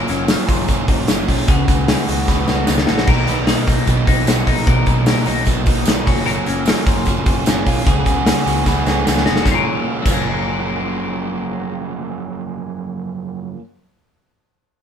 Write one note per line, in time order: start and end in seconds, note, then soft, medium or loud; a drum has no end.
0.00 1.51 F#3 loud
0.00 0.29 A#4 medium
0.08 0.34 F#1 loud
0.08 0.69 C#4 medium
0.08 0.29 C#4 medium
0.08 0.29 F4 medium
0.08 hi-hat pedal medium
0.08 open hi-hat medium
0.08 tambourine medium
0.12 0.29 A#3 medium
0.28 0.49 F#3 medium
0.28 0.49 A#3 medium
0.28 0.50 C#4 medium
0.28 0.48 F4 medium
0.28 1.48 A#4 medium
0.28 snare loud
0.28 hi-hat pedal medium
0.28 open hi-hat loud
0.28 tambourine medium
0.48 0.65 F#1 loud
0.48 0.69 C#4 medium
0.48 0.69 F4 medium
0.48 0.89 F4 medium
0.48 kick loud
0.48 hi-hat pedal medium
0.48 open hi-hat medium
0.48 tambourine medium
0.52 0.68 A#3 soft
0.68 0.85 F#1 loud
0.68 0.89 F#3 medium
0.68 0.89 A#3 medium
0.68 1.08 C#4 medium
0.68 0.89 C#4 loud
0.68 0.87 F4 loud
0.68 kick medium
0.68 hi-hat pedal medium
0.68 open hi-hat medium
0.68 tambourine medium
0.88 1.05 F#1 loud
0.88 1.08 A#3 soft
0.88 1.08 C#4 medium
0.88 0.99 D#4 medium
0.88 1.09 F4 medium
0.88 kick loud
0.88 hi-hat pedal medium
0.88 open hi-hat medium
0.88 tambourine medium
0.99 1.27 F4 medium
1.07 1.25 F#1 loud
1.07 1.28 F#3 medium
1.07 1.29 A#3 medium
1.07 1.53 C#4 medium
1.07 1.27 C#4 medium
1.07 1.25 F4 medium
1.07 snare loud
1.07 hi-hat pedal medium
1.07 open hi-hat loud
1.07 tambourine medium
1.27 1.45 B1 loud
1.27 1.49 A#3 soft
1.27 1.48 C#4 medium
1.27 1.47 F4 medium
1.27 1.52 F4 medium
1.27 kick medium
1.27 hi-hat pedal medium
1.27 open hi-hat medium
1.48 1.65 C#2 loud
1.48 1.68 C#3 medium
1.48 3.08 C#3 loud
1.48 1.69 G#3 medium
1.48 1.68 B3 medium
1.48 1.66 F#4 medium
1.48 1.87 G#4 medium
1.48 kick loud
1.48 hi-hat pedal medium
1.48 open hi-hat medium
1.48 tambourine soft
1.67 1.93 C#2 medium
1.67 1.88 G#3 medium
1.67 2.27 B3 medium
1.67 1.89 B3 medium
1.67 1.88 F#4 medium
1.67 kick loud
1.67 hi-hat pedal medium
1.67 open hi-hat medium
1.67 tambourine medium
1.88 2.08 C#3 medium
1.88 2.09 G#3 medium
1.88 2.09 B3 medium
1.88 2.08 F#4 medium
1.88 3.08 G#4 medium
1.88 snare loud
1.88 hi-hat pedal medium
1.88 open hi-hat loud
1.88 tambourine medium
2.08 2.25 C#2 loud
2.08 2.29 B3 medium
2.08 2.47 F#4 medium
2.08 2.29 F#4 medium
2.08 hi-hat pedal medium
2.08 open hi-hat medium
2.08 tambourine medium
2.12 2.29 G#3 soft
2.28 2.45 C#2 loud
2.28 2.49 C#3 loud
2.28 2.49 G#3 medium
2.28 2.67 B3 medium
2.28 2.48 B3 loud
2.28 2.47 F#4 loud
2.28 kick medium
2.28 snare medium
2.28 tambourine medium
2.47 2.65 C#2 loud
2.47 2.69 B3 medium
2.47 2.87 F#4 medium
2.47 2.68 F#4 medium
2.47 snare medium
2.47 tambourine medium
2.52 2.69 G#3 medium
2.67 2.85 C#2 loud
2.67 2.88 C#3 medium
2.67 2.89 G#3 medium
2.67 3.27 B3 medium
2.67 2.89 B3 medium
2.67 snare loud
2.67 tambourine loud
2.71 2.88 F#4 medium
2.78 snare medium
2.87 3.05 A#1 loud
2.87 3.09 B3 medium
2.87 3.50 F#4 medium
2.87 3.08 F#4 medium
2.87 snare loud
2.87 tambourine soft
2.92 3.10 G#3 soft
2.98 snare medium
3.07 3.24 B1 loud
3.07 4.66 B2 medium
3.07 3.28 B2 medium
3.07 3.29 F#3 medium
3.07 3.29 A#3 medium
3.07 3.27 D#4 loud
3.07 3.47 A#4 medium
3.07 kick loud
3.07 tambourine soft
3.07 crash medium
3.27 3.53 B1 loud
3.27 3.48 A#3 medium
3.27 3.87 B3 medium
3.27 3.48 D#4 medium
3.27 hi-hat pedal medium
3.27 open hi-hat medium
3.27 tambourine medium
3.31 3.48 F#3 medium
3.47 3.68 B2 medium
3.47 3.68 F#3 medium
3.47 3.67 A#3 medium
3.47 3.66 D#4 medium
3.47 3.57 G#4 medium
3.47 snare loud
3.47 hi-hat pedal medium
3.47 open hi-hat loud
3.47 tambourine medium
3.57 4.67 A#4 medium
3.67 3.84 B1 medium
3.67 3.88 F#3 medium
3.67 3.88 A#3 medium
3.67 3.88 D#4 medium
3.67 4.07 D#4 medium
3.67 kick loud
3.67 hi-hat pedal medium
3.67 open hi-hat medium
3.67 tambourine medium
3.87 4.04 B1 loud
3.87 4.08 B2 medium
3.87 4.08 F#3 loud
3.87 4.08 A#3 medium
3.87 4.26 B3 medium
3.87 4.07 D#4 loud
3.87 kick medium
3.87 hi-hat pedal medium
3.87 open hi-hat medium
3.87 tambourine medium
4.07 4.24 B1 loud
4.07 4.28 F#3 medium
4.07 4.28 A#3 medium
4.07 4.46 D#4 medium
4.07 4.28 D#4 medium
4.07 kick loud
4.07 hi-hat pedal medium
4.07 open hi-hat medium
4.07 tambourine medium
4.27 4.44 B1 loud
4.27 4.47 B2 medium
4.27 4.48 F#3 medium
4.27 4.47 A#3 medium
4.27 4.86 B3 medium
4.27 4.46 D#4 medium
4.27 snare loud
4.27 hi-hat pedal medium
4.27 open hi-hat loud
4.27 tambourine loud
4.47 4.64 A#1 medium
4.47 4.67 F#3 soft
4.47 4.68 A#3 medium
4.47 4.67 D#4 medium
4.47 5.26 D#4 medium
4.47 kick medium
4.47 hi-hat pedal medium
4.47 open hi-hat medium
4.47 tambourine soft
4.67 4.84 B1 loud
4.67 6.11 B2 loud
4.67 4.88 B2 medium
4.67 4.88 F#3 medium
4.67 4.88 A#3 loud
4.67 4.87 D#4 medium
4.67 5.06 A#4 medium
4.67 kick loud
4.67 hi-hat pedal medium
4.67 open hi-hat medium
4.86 5.12 B1 loud
4.86 5.46 B3 medium
4.86 5.08 D#4 medium
4.86 kick medium
4.86 hi-hat pedal medium
4.86 open hi-hat medium
4.86 tambourine soft
4.90 5.07 F#3 medium
4.90 5.08 A#3 medium
5.06 5.27 B2 medium
5.06 5.28 F#3 medium
5.06 5.28 A#3 medium
5.06 5.27 D#4 medium
5.06 6.11 A#4 medium
5.06 snare loud
5.06 hi-hat pedal medium
5.06 open hi-hat loud
5.06 tambourine medium
5.26 5.44 B1 loud
5.26 5.48 A#3 medium
5.26 5.66 D#4 medium
5.26 5.48 D#4 medium
5.26 hi-hat pedal medium
5.26 open hi-hat medium
5.26 tambourine medium
5.31 5.47 F#3 medium
5.45 5.64 B1 loud
5.45 5.67 B2 medium
5.45 5.67 F#3 loud
5.45 5.67 A#3 medium
5.45 5.86 B3 medium
5.45 5.66 D#4 loud
5.45 kick medium
5.45 hi-hat pedal medium
5.45 open hi-hat medium
5.45 tambourine medium
5.66 5.83 B1 loud
5.66 5.86 F#3 medium
5.66 5.86 A#3 medium
5.66 5.87 D#4 medium
5.66 6.11 D#4 medium
5.66 kick loud
5.66 hi-hat pedal medium
5.66 open hi-hat medium
5.66 tambourine medium
5.85 6.04 B1 loud
5.85 6.06 B2 medium
5.85 6.07 F#3 medium
5.85 6.07 A#3 medium
5.85 6.11 B3 medium
5.85 6.06 D#4 medium
5.85 snare loud
5.85 hi-hat pedal medium
5.85 open hi-hat loud
5.85 tambourine loud
6.06 6.40 F#1 loud
6.06 6.24 F3 soft
6.06 6.25 F#3 medium
6.06 6.25 A#3 medium
6.06 6.26 C#4 medium
6.06 kick loud
6.06 hi-hat pedal medium
6.06 open hi-hat medium
6.06 tambourine soft
6.26 6.46 F#2 medium
6.26 6.46 C#3 loud
6.26 6.46 F3 medium
6.26 7.91 F#3 medium
6.26 6.47 A#3 medium
6.26 6.46 C#4 loud
6.26 6.66 A#4 medium
6.26 hi-hat pedal medium
6.26 open hi-hat medium
6.46 6.72 F#1 loud
6.46 6.66 F3 medium
6.46 6.66 A#3 medium
6.46 6.67 C#4 medium
6.46 7.07 C#4 medium
6.46 hi-hat pedal medium
6.46 open hi-hat medium
6.46 tambourine medium
6.66 6.86 C#3 medium
6.66 6.87 F3 medium
6.66 6.87 A#3 medium
6.66 6.85 C#4 medium
6.66 7.87 A#4 medium
6.66 snare loud
6.66 hi-hat pedal medium
6.66 open hi-hat loud
6.66 tambourine medium
6.86 7.03 F#1 loud
6.86 7.06 F3 soft
6.86 7.07 A#3 medium
6.86 7.06 C#4 medium
6.86 7.26 F4 medium
6.86 kick loud
6.86 hi-hat pedal medium
6.86 open hi-hat medium
6.86 tambourine medium
7.05 7.23 F#1 loud
7.05 7.26 F#2 loud
7.05 7.26 C#3 loud
7.05 7.27 F3 loud
7.05 7.27 A#3 medium
7.05 7.47 C#4 medium
7.05 7.25 C#4 loud
7.05 kick medium
7.05 hi-hat pedal medium
7.05 open hi-hat medium
7.05 tambourine medium
7.26 7.43 F#1 loud
7.26 7.45 F3 medium
7.26 7.47 A#3 medium
7.26 7.46 C#4 medium
7.26 7.66 F4 medium
7.26 kick loud
7.26 hi-hat pedal medium
7.26 open hi-hat medium
7.26 tambourine medium
7.45 7.63 F#1 loud
7.45 7.66 C#3 medium
7.45 7.66 F3 medium
7.45 7.66 A#3 medium
7.45 8.05 C#4 medium
7.45 7.63 C#4 medium
7.45 snare loud
7.45 hi-hat pedal medium
7.45 open hi-hat loud
7.45 tambourine loud
7.65 7.83 B1 medium
7.65 7.84 F3 medium
7.65 7.85 A#3 medium
7.65 7.85 C#4 medium
7.65 7.91 F4 medium
7.65 kick medium
7.65 hi-hat pedal medium
7.65 open hi-hat medium
7.84 8.03 C#2 loud
7.84 8.05 C#3 medium
7.84 9.46 C#3 loud
7.84 8.05 F#3 medium
7.84 8.06 B3 medium
7.84 8.06 F#4 medium
7.84 8.05 G#4 medium
7.84 8.25 G#4 medium
7.84 kick loud
7.84 hi-hat pedal medium
7.84 open hi-hat loud
7.84 tambourine soft
8.05 8.31 C#2 loud
8.05 8.66 B3 medium
8.05 8.26 B3 medium
8.05 8.26 F#4 medium
8.05 8.26 G#4 medium
8.05 kick medium
8.05 hi-hat pedal medium
8.05 open hi-hat medium
8.05 tambourine medium
8.26 8.46 F#3 medium
8.26 8.46 B3 medium
8.26 8.45 F#4 medium
8.26 9.50 G#4 medium
8.26 8.43 G#4 medium
8.26 snare loud
8.26 hi-hat pedal medium
8.26 open hi-hat loud
8.26 tambourine medium
8.44 8.62 C#2 loud
8.44 8.66 B3 medium
8.44 8.86 F#4 medium
8.44 8.66 F#4 medium
8.44 8.65 G#4 medium
8.44 hi-hat pedal medium
8.44 open hi-hat medium
8.44 tambourine medium
8.66 8.83 C#2 loud
8.66 8.86 C#3 medium
8.66 8.86 F#3 loud
8.66 9.04 B3 medium
8.66 8.86 B3 loud
8.66 8.86 F#4 medium
8.66 8.85 G#4 loud
8.66 kick medium
8.66 snare medium
8.66 tambourine medium
8.86 9.03 C#2 loud
8.86 9.05 B3 medium
8.86 9.25 F#4 medium
8.86 9.06 F#4 medium
8.86 9.06 G#4 medium
8.86 snare medium
8.86 tambourine medium
9.05 9.23 C#2 loud
9.05 9.25 F#3 medium
9.05 9.47 B3 medium
9.05 9.26 B3 medium
9.05 9.26 F#4 medium
9.05 9.25 G#4 medium
9.05 snare loud
9.05 tambourine loud
9.17 snare medium
9.26 9.43 F1 medium
9.26 9.47 B3 soft
9.26 9.51 F#4 medium
9.26 9.46 F#4 medium
9.26 9.46 G#4 medium
9.26 snare loud
9.36 snare medium
9.42 9.57 F#1 loud
9.42 10.02 F#2 medium
9.42 10.05 C#3 medium
9.42 10.02 F#3 medium
9.42 kick medium
9.42 snare medium
9.46 10.05 F3 medium
9.46 10.07 C#4 medium
9.46 tambourine medium
9.51 10.11 A#3 loud
9.51 10.13 C#4 medium
9.51 10.05 F4 loud
9.51 10.14 A#4 loud
10.02 13.10 F#1 loud
10.02 13.52 F#2 medium
10.02 13.56 C#3 medium
10.02 13.52 F#3 medium
10.02 kick loud
10.02 crash medium
10.02 tambourine medium
10.07 13.59 F3 medium
10.07 13.61 A#3 loud
10.07 13.57 C#4 medium
10.07 13.61 F4 medium
10.14 13.64 C#4 medium
10.14 13.64 A#4 medium